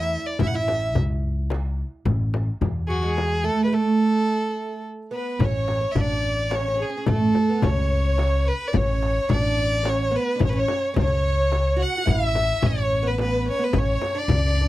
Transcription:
Already playing: E2 E4 E5
0.13 darbuka ka
0.26 D5
0.39 A1 E4 E5, frame drum, darbuka dum
0.47 F#5
0.54 E4 E5
0.68 darbuka tek, frame drum
0.95 C#2, frame drum, darbuka dum
1.50 darbuka tek, frame drum
1.79 darbuka ka
2.05 A1, frame drum, darbuka dum
2.34 darbuka tek, frame drum
2.61 E2, frame drum, darbuka dum
2.87 F#3 F#4 G#4
3.02 G#3 G#4
3.17 darbuka tek, frame drum
3.44 A3 A4
3.65 G#3 B4
3.73 A3 A4
5.11 B3 B4
5.39 A1 C#4 C#5, frame drum, darbuka dum
5.44 C#5
5.68 darbuka tek, frame drum
5.81 C#4
5.91 A1 E5
5.95 D4 D5, frame drum, darbuka dum
6.00 D5
6.09 darbuka ka
6.51 C#4 C#5, darbuka tek, frame drum
6.55 C#4 C#5
6.68 C#4
6.74 C#4
6.78 G#4, darbuka ka
6.83 G#4
6.90 C#4
6.98 C#4
7.07 A1 A3 A4, frame drum, darbuka dum
7.35 frame drum
7.49 B3
7.62 C#2 C#4 C#5, frame drum, darbuka dum
7.78 darbuka ka
8.18 darbuka tek, frame drum
8.47 B4, darbuka ka
8.68 D5
8.73 A1 C#4 C#5, darbuka dum, frame drum
9.02 darbuka tek
9.29 A1 D4 D5, darbuka dum, frame drum
9.34 D5
9.44 darbuka ka
9.83 C#4 C#5, darbuka tek, frame drum
9.89 C#5
10.11 B3 B4
10.16 B4
10.35 C#4 D4
10.40 A1 C#5, frame drum, darbuka dum
10.44 C#5
10.50 C#4 B4
10.56 C#5
10.68 darbuka tek, frame drum
10.94 C#2 C#4 C#5, darbuka dum, frame drum
11.00 D4 C#5
11.07 C#4, darbuka ka
11.52 darbuka tek, frame drum
11.77 F#4 F#5
11.82 F#5
11.98 F#4
12.06 A1 E4 E5, frame drum, darbuka dum
12.11 E5
12.35 darbuka tek, frame drum
12.62 A1 C#4 C#5, frame drum, darbuka dum
12.78 darbuka ka
13.03 B3 B4
13.07 B4
13.18 B3 B4, darbuka tek, frame drum
13.22 B4
13.46 C#4, darbuka ka
13.51 C#5
13.59 B3
13.64 B4
13.73 A1 C#4 C#5, frame drum, darbuka dum
13.78 C#5
14.01 darbuka tek, frame drum
14.15 D4 D5
14.23 D4
14.28 C#2 D4, frame drum, darbuka dum
14.38 D4
14.44 D4, darbuka ka
14.55 D4
14.61 D4

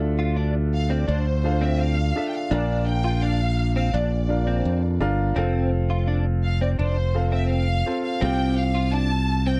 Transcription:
Already playing: D2 D3 D4 F4 A4 E5
0.19 F4
0.36 D4
0.75 F5
0.90 C4 D5
1.08 D2 D4 C5
1.44 D4 F4 A4 F5
1.61 C4 E5
1.80 F5
2.16 D4 F4 A4 E5
2.29 G5
2.34 F5
2.51 A#1 A#2 D4 F4 A#4 D5 F5
2.87 G5
3.04 F4
3.22 D4 F5
3.76 C4 F5
3.94 A#1 D4 D5
4.29 D4 F4 A#4 F5
4.47 C4
4.65 F2
5.00 G1 D4 F4 A#4 F5
5.36 F1 C4 F4 A4 F5
5.90 F4
6.08 D4
6.44 F5
6.61 C4 D5
6.79 F1 D4 C5
7.14 C4 F4 A4 F5
7.32 C4 E5
7.51 F5
7.86 C4 F4 A4 C5
8.03 F5
8.21 C2 C3 C4 F4 G4 F5 G5
8.57 F5
8.75 F4
8.92 D4 A5
9.46 C4 G5

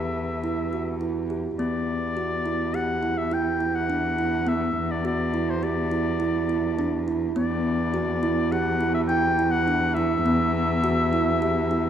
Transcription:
Already playing: E2 G4 E5
0.44 E4
0.73 F#4
1.01 E4
1.30 G4
1.59 E2 B3 D5
2.17 F#4
2.46 E4
2.74 G4 F#5
3.03 E4
3.18 E5
3.31 E4 G5
3.60 E4
3.75 F#5
3.90 D4
4.19 E4
4.47 B3 E5
4.91 D5
5.05 F#4 D5
5.34 E4
5.50 C5
5.63 G4 D5
5.91 E4
6.20 E4
6.49 E4
6.79 D4
7.08 E4
7.36 E2 B3 D5
7.94 F#4
8.23 E4
8.52 G4 F#5
8.81 E4
8.94 E5
9.08 E4 G5
9.39 E4
9.51 F#5
9.68 D4
9.94 E4 E5
10.26 B3
10.84 F#4
11.13 E4
11.42 G4
11.71 E4

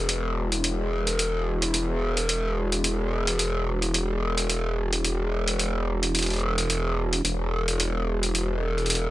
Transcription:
Already playing: E1
0.09 closed hi-hat
0.52 closed hi-hat
0.64 closed hi-hat
1.07 closed hi-hat
1.19 closed hi-hat
1.62 closed hi-hat
1.74 closed hi-hat
2.17 closed hi-hat
2.29 closed hi-hat
2.72 closed hi-hat
2.84 closed hi-hat
3.27 closed hi-hat
3.39 closed hi-hat
3.82 closed hi-hat
3.94 closed hi-hat
4.38 closed hi-hat
4.50 closed hi-hat
4.93 closed hi-hat
5.05 closed hi-hat
5.48 closed hi-hat
5.59 closed hi-hat
6.03 closed hi-hat
6.15 closed hi-hat
6.19 closed hi-hat
6.23 closed hi-hat
6.26 closed hi-hat
6.30 closed hi-hat
6.33 closed hi-hat
6.36 closed hi-hat
6.39 closed hi-hat
6.58 closed hi-hat
6.70 closed hi-hat
7.13 closed hi-hat
7.25 E1, closed hi-hat
7.68 closed hi-hat
7.80 closed hi-hat
8.23 closed hi-hat
8.35 closed hi-hat
8.78 closed hi-hat
8.86 closed hi-hat
8.90 closed hi-hat
8.95 closed hi-hat

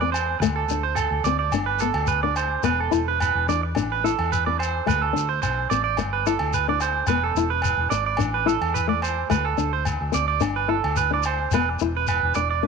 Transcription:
Already playing: E2
0.01 C4 D5
0.12 C5, low agogo, shekere
0.40 D2 A3, muted clean electric guitar stroke, low agogo, shekere
0.56 A4
0.68 D2 D4, shekere
0.83 C5
0.95 A4, low agogo, shekere
1.11 D2
1.24 D2 C4 D5, shekere
1.39 D5
1.52 G1 D4, low agogo, shekere
1.66 B4
1.79 B3 A4, shekere
1.94 D2, low agogo
2.07 B4, shekere
2.23 D4 D5
2.36 C5, low agogo, shekere
2.63 E1 B3 B4, low agogo, shekere
2.80 A4
2.91 E1 E4, shekere
3.08 B4
3.20 B4, low agogo, shekere
3.35 E1
3.48 E2 D4 D5, shekere
3.63 muted clean electric guitar stroke
3.75 A1 D4, low agogo, shekere
3.92 B4
4.04 E4 A4, shekere
4.19 E2, low agogo
4.32 B4, shekere
4.46 C4 D5
4.59 C5, low agogo, shekere
4.86 D2 A3 B4, low agogo, shekere
5.02 A4
5.13 D2 D4, shekere
5.29 C5
5.42 B1 C5, low agogo, shekere
5.70 A1 C4 D5, shekere
5.84 D5
5.97 G1, muted nylon-string guitar stroke, low agogo, shekere
6.13 B4
6.26 E4 A4, shekere
6.39 D2, low agogo
6.53 B4, shekere
6.68 D4 D5
6.80 C5, low agogo, shekere
7.07 E1 B3 B4, low agogo, shekere
7.23 A4
7.35 E1 E4, shekere
7.50 B4
7.62 B4, low agogo, shekere
7.77 E1
7.90 G#1 D5, muted nylon-string guitar stroke, shekere
8.06 D5
8.17 A1 D4, low agogo, shekere
8.34 B4
8.46 E4 A4, shekere
8.61 E2, low agogo
8.74 B4, shekere
8.88 A3 D5
9.02 C5, low agogo, shekere
9.30 D2 A3 B4, low agogo, shekere
9.45 A4
9.58 D2 D4, shekere
9.73 C5
9.85 low agogo, shekere
10.01 D2
10.12 D2 C4 D5, shekere
10.28 D5
10.40 G1 D4, low agogo, shekere
10.56 B4
10.68 E4 A4
10.84 D2, low agogo
10.96 B4, shekere
11.11 D4 D5
11.23 C5, low agogo, shekere
11.51 E1 B3 B4, low agogo, shekere
11.69 muted clean electric guitar stroke
11.79 E1 E4, shekere
11.96 B4
12.07 B4, low agogo, shekere
12.23 E1
12.34 E1 D4 D5, shekere
12.50 D5
12.63 D4

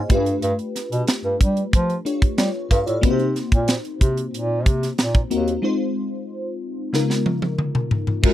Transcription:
Already playing: F4 G#4 C5 C#5 D#5 F5 G#5
0.09 G2 A3 D4 F4 G4 B4, kick, closed hi-hat
0.26 closed hi-hat
0.42 G2, closed hi-hat
0.59 closed hi-hat
0.76 snare, closed hi-hat
0.92 B2, closed hi-hat
1.07 snare, closed hi-hat
1.24 G2
1.41 G3, kick, closed hi-hat
1.57 closed hi-hat
1.73 F3, kick, closed hi-hat
1.90 closed hi-hat
2.05 A3 D4 F4 G4 C#5, closed hi-hat
2.22 kick, closed hi-hat
2.38 G3 F4 C#5, snare, closed hi-hat
2.71 G2 A4 F5, kick, closed hi-hat
2.86 A2 F4 D5, closed hi-hat
3.01 C3 A#3 C4 D#4 F#4 B4, kick, closed hi-hat
3.10 C5
3.19 closed hi-hat
3.36 snare, closed hi-hat
3.52 A#2, kick, closed hi-hat
3.68 snare, closed hi-hat
3.85 closed hi-hat
4.01 C3, kick, closed hi-hat
4.17 closed hi-hat
4.33 A#2, closed hi-hat
4.66 C3, kick, closed hi-hat
4.83 snare, closed hi-hat
4.98 A#2, snare, closed hi-hat
5.15 kick, closed hi-hat
5.30 D#2 A#3 C4 D#4 F#4 A#4, closed hi-hat
5.48 closed hi-hat
5.62 G#3 C4 D#4 F4 C5
6.93 C#3 G#3 B3 D#4 F4 A#4, snare
7.10 snare
7.26 high tom
7.42 high tom
7.58 mid tom
7.75 mid tom
7.91 floor tom
8.07 floor tom
8.23 F#2 G#3 C#4 F4 F#4 A#4, kick, crash

